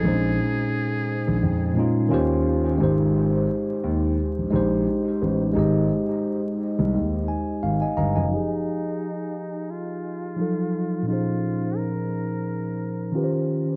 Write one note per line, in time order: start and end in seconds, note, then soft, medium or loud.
0.00 0.91 A#2 medium
0.00 0.92 G#3 medium
0.00 1.97 G#4 medium
0.05 0.36 A#1 loud
0.05 0.11 C4 soft
0.05 0.94 D#4 medium
0.05 0.94 C5 medium
0.11 0.96 C#4 medium
1.28 1.41 A#1 medium
1.43 1.74 F2 medium
1.74 2.09 A#2 medium
1.74 2.10 G#3 medium
1.74 2.09 C#4 medium
1.78 2.12 D#4 medium
1.78 2.10 F4 medium
2.09 2.76 D#2 medium
2.09 2.66 D#3 loud
2.09 2.67 C#4 medium
2.09 2.68 F4 medium
2.13 2.68 G4 medium
2.13 2.69 C5 loud
2.78 3.45 G#1 loud
2.78 3.67 G#3 medium
2.78 3.68 D#4 medium
2.78 3.69 G4 medium
2.83 3.70 C5 medium
3.84 4.15 D#2 medium
4.38 4.44 A#1 soft
4.50 4.84 A#1 medium
4.50 5.17 G#3 medium
4.50 5.17 D#4 medium
4.50 5.18 G4 medium
4.56 5.19 C5 medium
5.22 5.53 A1 medium
5.53 5.88 G#1 loud
5.53 6.43 G#3 medium
5.53 6.44 D#4 medium
5.53 6.45 G4 medium
5.59 6.46 D#5 medium
6.79 6.94 C2 medium
6.94 7.26 D#2 medium
7.28 7.60 G#5 medium
7.63 7.80 G#1 medium
7.63 7.95 F5 medium
7.82 7.96 D#5 medium
7.82 7.96 G#5 medium
7.97 8.15 G1 medium
7.97 8.15 D#5 medium
7.97 8.15 F5 medium
7.97 8.15 A#5 medium
8.16 8.31 F#1 medium
8.16 8.49 D#5 medium
8.16 8.49 G#5 medium
8.26 10.31 F3 soft
8.26 10.33 D#4 soft
8.33 9.72 D#4 medium
8.33 10.35 G4 soft
8.37 10.37 G#4 medium
9.71 11.08 F4 medium
10.36 11.03 F3 medium
10.36 11.08 F#3 medium
10.36 11.07 D#4 medium
10.41 11.09 A4 medium
11.02 13.08 A#2 medium
11.02 13.08 F3 soft
11.02 13.10 C#4 soft
11.08 13.11 D#4 medium
11.08 11.78 F4 medium
11.08 13.12 G#4 soft
11.13 13.13 C5 medium
11.77 13.49 A#4 medium
13.12 13.76 D#3 medium
13.12 13.76 C#4 medium
13.12 13.76 F4 medium
13.16 13.76 G4 medium
13.16 13.23 B4 medium
13.24 13.76 C5 medium